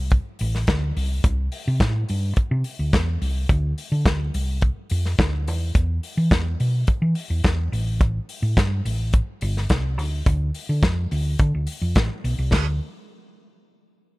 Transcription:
Already playing: fingered electric bass C2
0.11 kick, closed hi-hat
0.39 fingered electric bass A1, open hi-hat
0.55 snare
0.67 fingered electric bass D2, kick, snare, closed hi-hat
0.96 fingered electric bass C2, open hi-hat
1.24 fingered electric bass C2, kick, closed hi-hat
1.52 open hi-hat
1.68 fingered electric bass C3
1.80 fingered electric bass A2, kick, snare, closed hi-hat
2.09 fingered electric bass G2, open hi-hat
2.36 muted fingered electric bass stroke, kick, closed hi-hat
2.51 fingered electric bass C3
2.64 open hi-hat
2.79 fingered electric bass D2
2.93 fingered electric bass E2, kick, snare, closed hi-hat
3.21 fingered electric bass C2, open hi-hat
3.49 fingered electric bass D2, kick, closed hi-hat
3.78 open hi-hat
3.92 fingered electric bass D3
4.06 fingered electric bass D2, kick, snare, closed hi-hat
4.34 fingered electric bass C2, open hi-hat
4.61 kick, closed hi-hat
4.90 fingered electric bass F2, open hi-hat
5.05 snare
5.18 fingered electric bass D2, kick, snare, closed hi-hat
5.48 fingered electric bass E2, open hi-hat
5.75 fingered electric bass E2, kick, closed hi-hat
6.03 open hi-hat
6.17 fingered electric bass E3
6.31 fingered electric bass E2, kick, snare, closed hi-hat
6.60 fingered electric bass B2, open hi-hat
6.87 muted fingered electric bass stroke, kick, closed hi-hat
7.02 fingered electric bass E3
7.15 open hi-hat
7.30 fingered electric bass E2
7.44 fingered electric bass E2, kick, snare, closed hi-hat
7.72 fingered electric bass A1, open hi-hat
8.01 kick, closed hi-hat
8.29 open hi-hat
8.42 fingered electric bass A2
8.57 fingered electric bass G2, kick, snare, closed hi-hat
8.85 fingered electric bass A1, open hi-hat
9.13 kick, closed hi-hat
9.41 fingered electric bass G1, open hi-hat
9.57 snare
9.69 fingered electric bass C2, kick, snare, closed hi-hat
9.98 fingered electric bass D2, open hi-hat
10.26 fingered electric bass D2, kick, closed hi-hat
10.54 open hi-hat
10.69 fingered electric bass D3
10.83 fingered electric bass F2, kick, snare, closed hi-hat
11.11 fingered electric bass D2, open hi-hat
11.39 fingered electric bass D3, kick, closed hi-hat
11.54 fingered electric bass D2
11.67 open hi-hat
11.82 fingered electric bass F2
11.95 fingered electric bass A1, kick, snare, closed hi-hat
12.24 fingered electric bass B1, open hi-hat
12.38 fingered electric bass C2
12.52 fingered electric bass D2, kick, snare, crash

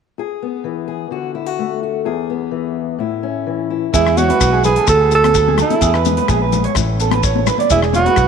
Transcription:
0.18 steel-string acoustic guitar G#4, muted steel-string acoustic guitar stroke
0.42 steel-string acoustic guitar B3
0.64 steel-string acoustic guitar E3
0.88 steel-string acoustic guitar G#4
1.11 steel-string acoustic guitar D3 F#4
1.35 steel-string acoustic guitar E4
1.46 steel-string acoustic guitar F#4
1.59 steel-string acoustic guitar A3
1.83 steel-string acoustic guitar F#4
2.05 steel-string acoustic guitar E2 G#4
2.30 steel-string acoustic guitar B3
2.51 steel-string acoustic guitar E3
2.99 steel-string acoustic guitar A2 E4
3.23 steel-string acoustic guitar C#4
3.46 steel-string acoustic guitar E3
3.70 steel-string acoustic guitar E4
3.93 steel-string acoustic guitar E2 E3 G#3 B3, fingered electric bass E2, alto saxophone E4, clean electric guitar G#4, kick, closed hi-hat, maracas
4.07 cross-stick
4.17 steel-string acoustic guitar G#3, alto saxophone F#4, clean electric guitar C#5, closed hi-hat, high conga, maracas
4.30 clean electric guitar B4, closed hi-hat, high conga
4.40 fingered electric bass B1, steel-string acoustic guitar B2, kick, cross-stick, closed hi-hat, maracas
4.53 clean electric guitar G#4
4.64 steel-string acoustic guitar C#3, alto saxophone G#4, clean electric guitar B4, closed hi-hat, low conga, maracas
4.76 clean electric guitar A4, closed hi-hat
4.87 fingered electric bass D2, steel-string acoustic guitar D3 F#4, alto saxophone A4, kick, cross-stick, closed hi-hat, maracas
5.01 clean electric guitar G#4
5.11 steel-string acoustic guitar D4, alto saxophone A4, muted clean electric guitar stroke, closed hi-hat, maracas
5.24 cross-stick, closed hi-hat, high conga
5.34 clean electric guitar A4, kick, closed hi-hat, maracas
5.48 clean electric guitar G#4, high conga
5.57 steel-string acoustic guitar A3, clean electric guitar A4, cross-stick, closed hi-hat, low conga, maracas
5.62 alto saxophone E4
5.70 closed hi-hat, high conga
5.81 steel-string acoustic guitar E2 B3, fingered electric bass E2, clean electric guitar G#4, kick, closed hi-hat, maracas
5.94 clean electric guitar B4, cross-stick
6.05 steel-string acoustic guitar G#3, closed hi-hat, high conga, maracas
6.17 clean electric guitar B4, closed hi-hat, high conga
6.28 fingered electric bass A#1, steel-string acoustic guitar F#2, clean electric guitar G#4, kick, cross-stick, closed hi-hat, maracas
6.42 clean electric guitar B4
6.52 steel-string acoustic guitar G#2, closed hi-hat, low conga, maracas
6.64 clean electric guitar C#5, closed hi-hat
6.75 fingered electric bass A1, steel-string acoustic guitar A2 C#4, muted clean electric guitar stroke, kick, cross-stick, closed hi-hat, maracas
7.00 steel-string acoustic guitar B3, clean electric guitar A4, closed hi-hat, maracas
7.11 clean electric guitar B4, cross-stick, closed hi-hat, high conga
7.23 clean electric guitar C#5, kick, closed hi-hat, maracas
7.36 high conga
7.46 clean electric guitar B4, muted steel-string acoustic guitar stroke, cross-stick, closed hi-hat, low conga, maracas
7.58 clean electric guitar D5, closed hi-hat, high conga
7.70 fingered electric bass E1, steel-string acoustic guitar E3 G#3 B3, alto saxophone E4, clean electric guitar G#4, muted steel-string acoustic guitar stroke, kick, closed hi-hat, maracas
7.82 cross-stick
7.93 steel-string acoustic guitar G#3, alto saxophone F#4, clean electric guitar C#5, closed hi-hat, high conga, maracas
8.06 clean electric guitar B4, closed hi-hat, high conga
8.16 fingered electric bass B1, kick, cross-stick, closed hi-hat, maracas

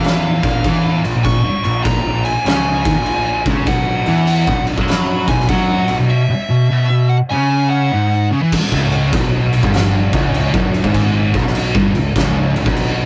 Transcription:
Already playing: picked electric bass E2, distorted electric guitar E3
0.04 lead electric guitar F5, snare, crash
0.43 picked electric bass A#1, distorted electric guitar A#2, kick, crash
0.64 picked electric bass E2, distorted electric guitar E3, kick, crash
1.04 picked electric bass A#1, distorted electric guitar A#2, crash
1.15 picked electric bass A#1, distorted electric guitar A#2
1.25 lead electric guitar C#6, kick, crash
1.45 muted picked electric bass stroke, muted distorted electric guitar stroke
1.64 picked electric bass A#1, distorted electric guitar A#2, lead electric guitar C#6, crash
1.83 picked electric bass A#1, distorted electric guitar A#2, lead electric guitar A#5, kick, crash
2.06 picked electric bass A#1, distorted electric guitar A#2
2.25 lead electric guitar G#5, crash
2.45 picked electric bass C#2, distorted electric guitar C#3, lead electric guitar G#5, snare, crash
2.85 picked electric bass D#2, distorted electric guitar D#3, kick, crash
2.96 picked electric bass A#1, distorted electric guitar A#2
3.06 crash
3.45 picked electric bass C#2, distorted electric guitar C#3, kick, crash
3.66 picked electric bass B1, distorted electric guitar B2, lead electric guitar F#5, kick, crash
4.06 picked electric bass E2, distorted electric guitar E3, crash
4.27 crash
4.47 picked electric bass B1, distorted electric guitar B2, kick
4.67 crash
4.78 picked electric bass F#2, distorted electric guitar F#3, kick
4.88 lead electric guitar B5, snare, crash
5.28 picked electric bass B1, distorted electric guitar B2, lead electric guitar G#5, kick, crash
5.40 snare
5.48 picked electric bass F#2, distorted electric guitar F#3, lead electric guitar F#5, kick, crash
5.88 picked electric bass B1, distorted electric guitar B2, crash
5.99 picked electric bass B1, distorted electric guitar B2
6.10 lead electric guitar E5
6.29 muted distorted electric guitar stroke
6.49 distorted electric guitar B2
6.71 distorted electric guitar B2
6.90 distorted electric guitar B2
7.09 lead electric guitar F#5
7.30 distorted electric guitar C#3, lead electric guitar G#5
7.70 lead electric guitar F#5
7.92 distorted electric guitar G#2
8.32 distorted electric guitar C#3
8.43 distorted electric guitar E3
8.52 kick, crash
8.72 picked electric bass C#1, distorted electric guitar C#2, kick
8.92 crash
9.13 picked electric bass B1, distorted electric guitar B2, kick, crash
9.53 crash
9.63 picked electric bass G1, distorted electric guitar G2, kick
9.74 snare, crash
10.13 picked electric bass C#1, distorted electric guitar C#2, kick, crash
10.34 crash
10.54 picked electric bass F#1, distorted electric guitar F#2, kick
10.74 crash
10.84 picked electric bass G#1, distorted electric guitar G#2, kick
10.94 kick, crash
11.34 picked electric bass B1, distorted electric guitar B2, kick, crash
11.47 snare
11.55 crash
11.75 picked electric bass G1, distorted electric guitar G2, kick
11.95 picked electric bass C#1, distorted electric guitar C#2, crash
12.16 picked electric bass C#1, distorted electric guitar C#2, kick, snare, crash
12.56 picked electric bass C#1, distorted electric guitar C#2, crash
12.66 picked electric bass B1, distorted electric guitar B2, kick
12.77 crash

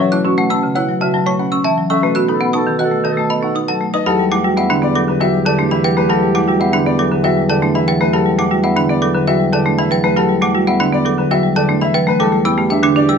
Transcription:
Already playing: bassoon B2
0.00 marimba F#3, grand piano C#5
0.12 marimba A3 E4, xylophone F#6
0.24 marimba C#4 F#4, grand piano C#6
0.38 marimba A3, xylophone F#5
0.50 marimba C#4, grand piano A5, xylophone E6
0.63 marimba C#3
0.75 marimba E4 C#5, grand piano F#5, xylophone F#6
0.89 marimba F#3
1.01 marimba C#3 F#4, grand piano E5, xylophone A5
1.13 marimba F#3, grand piano A5
1.26 marimba A3 C#5, xylophone C#6
1.39 marimba C#4, grand piano F#5
1.52 marimba C#4, xylophone E6
1.64 marimba E3 E5, xylophone A5, grand piano A5
1.78 marimba F#3
1.90 marimba C#4 A4, grand piano E5, xylophone E6
2.03 bassoon B2, marimba A3, clarinet A4, grand piano B4
2.15 marimba B3 F#4, xylophone F#6
2.29 marimba D#4 A4, clarinet A4, grand piano B5
2.41 marimba B3, xylophone F#5
2.53 marimba D#4, clarinet A4, grand piano A5, xylophone D#6
2.67 marimba D#3
2.79 marimba F#4 D#5, grand piano F#5, xylophone F#6
2.84 clarinet A4
2.92 marimba A3
3.04 marimba D#3 A4, grand piano D#5, xylophone A5
3.12 clarinet A4
3.17 marimba A3, grand piano A5
3.30 marimba B3 D#5, xylophone B5
3.39 marimba D#4, clarinet A4
3.44 grand piano F#5
3.55 marimba D#4, xylophone D#6
3.66 marimba F#3 F#5, clarinet A4, xylophone A5, grand piano A5
3.81 marimba A3
3.94 marimba D#4 B4, grand piano D#5, xylophone D#6
4.06 bassoon E2, marimba F#3 G4, clarinet G4, grand piano A4, xylophone B5
4.19 marimba G3
4.32 marimba A3 E4, grand piano F#5, xylophone D6
4.44 marimba G3 F#4
4.57 marimba B3, grand piano E5, xylophone F#5
4.70 marimba D3 D4, xylophone B5
4.82 marimba B3, grand piano D5
4.95 marimba F#3 A4, xylophone D6
5.08 marimba D3, grand piano B4
5.20 marimba F#3 F#4, grand piano E5, xylophone G5
5.33 marimba G3
5.46 marimba D3 A4, grand piano D5, xylophone A5
5.59 marimba A3 D4
5.71 marimba E3, grand piano E5, xylophone B5
5.84 marimba F#3 B4, xylophone G5
5.97 marimba A3, grand piano B4
6.09 marimba F#3 G4, grand piano A4, xylophone B5
6.23 marimba G3
6.35 marimba A3 E4, grand piano F#5, xylophone D6
6.48 marimba G3 F#4
6.60 marimba B3, grand piano E5, xylophone F#5
6.73 marimba D3 D4, xylophone B5
6.86 marimba B3, grand piano D5
6.99 marimba F#3 A4, xylophone D6
7.11 marimba D3, grand piano B4
7.24 marimba F#3 F#4, grand piano E5, xylophone G5
7.37 marimba G3
7.49 marimba D3 A4, grand piano D5, xylophone A5
7.62 marimba A3 D4
7.75 marimba E3, grand piano E5, xylophone B5
7.88 marimba F#3 B4, xylophone G5
8.01 marimba A3, grand piano B4
8.13 marimba F#3 G4, grand piano A4, xylophone B5
8.26 marimba G3
8.39 marimba A3 E4, grand piano F#5, xylophone D6
8.51 marimba G3 F#4
8.64 marimba B3, grand piano E5, xylophone F#5
8.76 marimba D3 D4, xylophone B5
8.89 marimba B3, grand piano D5
9.02 marimba F#3 A4, xylophone D6
9.14 marimba D3, grand piano B4
9.27 marimba F#3 F#4, grand piano E5, xylophone G5
9.40 marimba G3
9.53 marimba D3 A4, grand piano D5, xylophone A5
9.66 marimba A3 D4
9.78 marimba E3, grand piano E5, xylophone B5
9.91 marimba F#3 B4, xylophone G5
10.04 marimba A3, grand piano B4
10.16 marimba F#3 G4, grand piano A4, xylophone B5
10.29 marimba G3
10.42 marimba A3 E4, grand piano F#5, xylophone D6
10.55 marimba G3 F#4
10.67 marimba B3, grand piano E5, xylophone F#5
10.80 marimba D3 D4, xylophone B5
10.93 marimba B3, grand piano D5
11.05 marimba F#3 A4, xylophone D6
11.18 marimba D3, grand piano B4
11.31 marimba F#3 F#4, grand piano E5, xylophone G5
11.43 marimba G3
11.56 marimba D3 A4, grand piano D5, xylophone A5
11.69 marimba A3 D4
11.81 marimba E3, grand piano E5, xylophone B5
11.94 marimba F#3 B4, xylophone G5
12.07 marimba A3, grand piano B4
12.20 bassoon E2, marimba G3 A4, clarinet G4, grand piano A4, xylophone D6
12.32 marimba A3
12.45 marimba B3 E4, grand piano G5, xylophone E6
12.58 marimba A3 G4
12.70 marimba D4, grand piano E5, xylophone G5
12.83 marimba D3 D4, xylophone D6
12.96 marimba D4, grand piano D5
13.09 marimba G3 B4, xylophone E6

